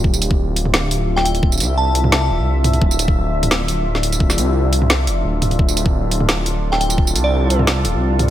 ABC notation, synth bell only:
X:1
M:4/4
L:1/16
Q:1/4=173
K:Dm
V:1 name="Synth bell"
z12 z g g z | z4 a2 z2 a a z6 | z16 | z16 |
z12 z g g z | z3 d4 z8 z |]